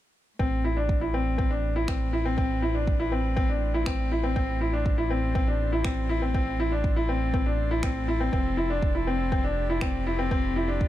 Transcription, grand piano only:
0.39 0.61 C4 medium
0.64 0.75 E4 medium
0.77 0.98 D4 medium
1.01 1.12 E4 medium
1.14 1.36 C4 medium
1.38 1.49 C4 medium
1.51 1.73 D4 medium
1.76 1.87 E4 medium
1.88 2.10 C4 medium
2.13 2.24 E4 medium
2.25 2.36 C4 medium
2.37 2.59 C4 medium
2.62 2.73 E4 medium
2.75 2.97 D4 medium
3.00 3.10 E4 medium
3.12 3.34 C4 medium
3.36 3.48 C4 medium
3.49 3.71 D4 medium
3.74 3.85 E4 medium
3.87 4.08 C4 medium
4.12 4.22 E4 medium
4.24 4.34 C4 medium
4.36 4.58 C4 medium
4.61 4.72 E4 medium
4.73 4.95 D4 medium
4.98 5.09 E4 medium
5.10 5.32 C4 medium
5.35 5.46 C4 medium
5.48 5.70 D4 medium
5.72 5.83 E4 medium
5.84 6.06 C4 medium
6.09 6.20 E4 medium
6.22 6.33 C4 medium
6.34 6.56 C4 medium
6.60 6.70 E4 medium
6.72 6.94 D4 medium
6.96 7.07 E4 medium
7.09 7.31 C4 medium
7.34 7.45 C4 medium
7.46 7.68 D4 medium
7.71 7.82 E4 medium
7.83 8.05 C4 medium
8.08 8.19 E4 medium
8.20 8.31 C4 medium
8.33 8.55 C4 medium
8.57 8.68 E4 medium
8.70 8.92 D4 medium
8.95 9.06 E4 medium
9.07 9.29 C4 medium
9.32 9.43 C4 medium
9.44 9.66 D4 medium
9.69 9.80 E4 medium
9.82 10.03 C4 medium
10.06 10.17 E4 medium
10.19 10.30 C4 medium
10.31 10.53 C4 medium
10.56 10.67 E4 medium
10.68 10.88 D4 medium

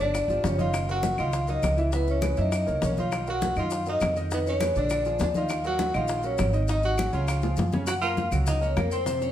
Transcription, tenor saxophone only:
0.01 0.42 D4 medium
0.46 0.59 C#4 medium
0.61 0.88 F4 medium
0.91 1.18 F#4 medium
1.20 1.47 F4 medium
1.50 1.77 D#4 medium
1.94 2.08 B3 medium
2.11 2.37 C#4 medium
2.40 2.81 D#4 medium
2.85 2.98 C#4 medium
2.99 3.26 F4 medium
3.30 3.56 F#4 medium
3.59 3.86 F4 medium
3.89 4.16 D#4 medium
4.34 4.40 B3 medium
4.49 4.75 C#4 medium
4.78 5.19 D4 medium
5.23 5.29 D4 medium
5.37 5.64 F4 medium
5.67 5.94 F#4 medium
5.96 6.23 F4 medium
6.26 6.53 C#4 medium
6.70 6.83 D#4 medium
6.85 7.12 F#4 medium
7.14 7.69 F4 medium
7.87 7.94 F#4 medium
8.01 8.30 F4 medium
8.48 8.61 D#4 medium
8.62 8.76 C#4 medium
8.77 8.91 A#3 medium
8.92 9.19 C4 medium
9.22 9.32 C#4 medium

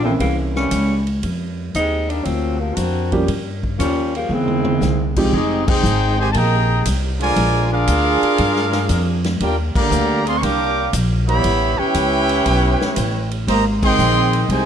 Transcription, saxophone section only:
0.03 0.11 D3 medium
0.03 0.10 F3 medium
0.03 0.11 A3 medium
0.03 0.11 C4 medium
0.19 0.35 C#3 medium
0.19 0.35 E3 medium
0.19 0.35 G3 medium
0.19 0.36 A#3 medium
0.55 1.03 E3 medium
0.55 1.03 G3 medium
0.55 1.03 A#3 medium
0.55 1.03 C#4 medium
1.75 2.08 G3 medium
1.75 2.08 G#3 medium
1.75 2.08 C4 medium
1.75 2.07 D#4 loud
2.09 2.25 D#3 medium
2.09 2.25 G3 medium
2.09 2.22 A#3 medium
2.09 2.26 D4 medium
2.23 2.57 F3 medium
2.23 2.56 F#3 medium
2.23 2.57 A#3 medium
2.23 2.59 C4 medium
2.57 2.75 C3 medium
2.57 2.75 F3 medium
2.57 2.75 F#3 medium
2.57 2.73 A#3 medium
2.74 3.19 A#3 medium
2.74 3.19 C4 medium
2.74 3.19 D4 medium
2.74 3.19 F#4 medium
3.79 4.11 F3 medium
3.79 4.12 G3 medium
3.79 4.11 A#3 medium
3.79 4.12 C#4 loud
4.16 4.31 C#3 medium
4.16 4.31 F3 medium
4.16 4.31 G3 medium
4.16 4.30 A#3 medium
4.31 5.17 E3 medium
4.31 5.17 G#3 medium
4.31 5.17 A#3 medium
4.31 5.17 C4 medium

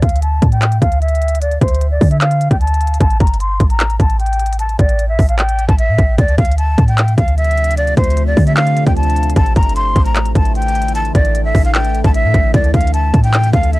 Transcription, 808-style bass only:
0.02 0.41 D2 loud
0.42 0.80 A2 loud
0.82 1.58 D2 loud
1.61 1.99 D2 loud
2.01 2.49 D3 loud
2.51 2.98 D2 loud
3.00 3.20 A1 loud
3.20 3.58 G1 loud
3.60 3.98 A1 loud
4.00 4.76 A1 loud
4.79 5.17 A1 loud
5.19 5.67 A1 loud
5.69 5.90 A1 loud
5.89 5.98 A2 loud
5.98 6.18 A1 loud
6.18 6.37 D2 loud
6.38 6.76 D2 loud
6.78 7.16 A2 loud
7.18 7.94 D2 loud
7.97 8.35 D2 loud
8.37 8.85 D3 loud
8.87 9.34 D2 loud
9.36 9.55 A1 loud
9.56 9.94 G1 loud
9.96 10.34 A1 loud
10.35 11.12 A1 loud
11.15 11.53 A1 loud
11.55 12.02 A1 loud
12.04 12.26 A1 loud
12.24 12.34 A2 loud
12.34 12.53 A1 loud
12.54 12.73 D2 loud
12.74 13.12 D2 loud
13.14 13.52 A2 loud
13.53 13.79 D2 loud

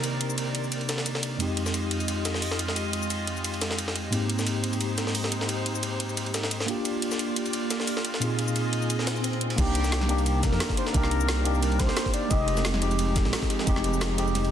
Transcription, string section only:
0.00 1.37 D#3 medium
0.00 1.37 C4 medium
0.00 1.37 A#4 medium
0.00 1.36 D5 medium
1.40 6.64 G#3 medium
1.40 4.10 F4 medium
1.40 8.18 G4 medium
1.40 4.10 D#5 medium
4.13 6.66 D#4 medium
4.13 6.66 C5 medium
6.68 9.55 A#3 medium
6.68 9.55 F4 medium
6.68 8.20 D5 medium
8.22 9.57 G#4 medium
8.22 9.57 D#5 medium
9.58 12.28 D#3 medium
9.58 12.28 C4 medium
9.58 12.28 A#4 medium
9.58 12.28 D5 medium
12.31 14.51 F3 medium
12.31 14.51 G#3 medium
12.31 14.51 D#4 medium
12.31 14.51 G4 medium

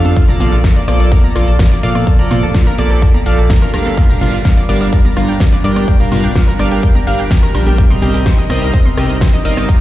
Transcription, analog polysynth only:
0.00 0.14 F3 medium
0.00 0.14 D4 medium
0.00 0.14 A4 medium
0.00 0.14 F5 loud
0.28 0.38 F3 medium
0.28 0.38 A#3 medium
0.28 0.38 A4 medium
0.28 0.38 D5 medium
0.40 0.54 F3 loud
0.40 0.54 A#3 medium
0.40 0.54 A4 medium
0.40 0.54 D5 loud
0.88 1.09 F3 medium
0.88 1.09 A#3 medium
0.88 1.09 A4 medium
0.88 1.09 D5 loud
1.35 1.49 F3 medium
1.35 1.49 A#3 medium
1.35 1.49 A4 medium
1.35 1.49 D5 medium
1.83 2.05 F3 medium
1.83 2.05 A#3 medium
1.83 2.05 A4 medium
1.83 2.05 F5 loud
2.19 2.29 F3 medium
2.19 2.29 A#3 medium
2.19 2.29 A4 medium
2.19 2.29 D5 loud
2.31 2.44 F3 loud
2.31 2.44 A#3 medium
2.31 2.44 A4 medium
2.31 2.44 D5 loud
2.78 3.00 F3 medium
2.78 3.00 A#3 medium
2.78 3.00 A4 medium
2.78 3.00 D5 loud
3.26 3.40 F3 medium
3.26 3.40 A#3 medium
3.26 3.40 A4 medium
3.26 3.40 D5 medium
3.74 4.07 G3 medium
3.74 4.07 D4 medium
3.74 4.07 A#4 medium
3.74 4.07 F5 medium
4.09 4.19 G3 medium
4.09 4.19 D4 medium
4.09 4.19 A#4 medium
4.09 4.19 F5 loud
4.21 4.35 G3 loud
4.21 4.35 D4 medium
4.21 4.35 A#4 medium
4.21 4.35 F5 loud
4.69 4.90 G3 medium
4.69 4.90 D4 medium
4.69 4.90 A#4 medium
4.69 4.90 F5 loud
5.16 5.30 G3 medium
5.16 5.30 D4 medium
5.16 5.30 A#4 medium
5.16 5.30 F5 medium
5.64 5.86 G3 medium
5.64 5.86 D4 medium
5.64 5.86 A#4 medium
5.64 5.86 G5 medium
6.00 6.10 G3 medium
6.00 6.10 D4 medium
6.00 6.10 A#4 medium
6.00 6.10 F5 loud
6.12 6.25 G3 loud
6.12 6.25 D4 medium
6.12 6.25 A#4 medium
6.12 6.25 F5 loud
6.59 6.81 G3 loud
6.59 6.81 D4 medium
6.59 6.81 A#4 medium
6.59 6.81 F5 loud
7.07 7.20 G3 medium
7.07 7.20 D4 medium
7.07 7.20 A#4 medium
7.07 7.21 F5 loud
7.54 7.76 G3 medium
7.54 7.76 D4 medium
7.54 7.76 A#4 medium
7.54 7.76 G5 loud
7.90 8.00 G3 medium
7.90 8.00 C4 medium
7.90 8.00 A#4 medium
7.90 8.00 D#5 loud
8.02 8.16 G3 loud
8.02 8.16 C4 medium
8.02 8.16 A#4 medium
8.02 8.16 D#5 loud
8.50 8.71 G3 loud
8.50 8.71 C4 medium
8.50 8.71 A#4 medium
8.50 8.71 D#5 loud
8.97 9.11 G3 medium
8.97 9.11 C4 medium
8.97 9.11 A#4 medium
8.97 9.11 D#5 loud
9.45 9.66 G3 medium
9.45 9.67 C4 medium
9.45 9.66 A#4 medium
9.45 9.66 F5 loud

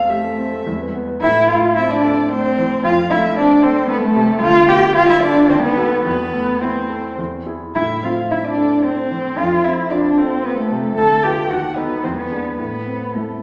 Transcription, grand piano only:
0.00 0.62 E2 medium
0.00 0.38 C4 soft
0.00 0.24 A4 soft
0.09 0.23 G4 soft
0.24 0.46 A4 soft
0.38 0.60 C4 soft
0.52 0.66 A3 soft
0.66 1.20 E2 medium
0.80 1.02 B4 soft
0.94 1.16 B3 soft
1.08 1.21 B4 soft
1.23 2.81 A2 medium
1.50 1.93 A3 medium
1.78 2.20 C4 medium
2.05 2.47 A4 medium
2.31 2.74 A3 medium
2.58 2.84 E3 medium
2.85 4.39 F2 medium
3.11 3.53 A3 medium
3.38 3.79 C4 medium
3.63 4.05 A4 medium
3.89 4.32 A3 medium
4.16 4.42 C3 medium
4.42 5.47 D2 medium
4.68 5.12 B3 medium
4.96 5.39 F4 medium
5.23 5.50 A4 medium
5.50 6.03 D#2 medium
5.77 6.02 F#4 medium
5.77 6.03 A4 medium
6.05 7.15 E2 medium
6.33 6.78 A3 soft
6.61 7.07 E4 soft
6.90 7.18 A4 soft
7.18 7.73 E2 medium
7.46 7.72 E4 soft
7.46 7.72 G#4 soft
7.76 9.33 A2 medium
8.03 8.46 C4 soft
8.31 8.73 E4 soft
8.58 9.00 A4 soft
8.84 9.26 C4 soft
9.11 9.37 E3 soft
9.39 10.93 F2 medium
9.65 10.07 C4 soft
9.92 10.34 F4 soft
10.18 10.60 A4 soft
10.46 10.87 C4 medium
10.71 10.97 C3 medium
10.98 11.49 D2 medium
11.25 11.48 F4 soft
11.25 11.48 B4 soft
11.51 12.02 D#2 medium
11.77 12.01 D#4 soft
11.77 12.01 A4 soft
12.04 12.57 E2 medium
12.31 12.56 D4 soft
12.31 12.56 G#4 soft
12.58 13.43 A2 soft
12.86 13.32 C4 soft
13.16 13.43 E4 soft

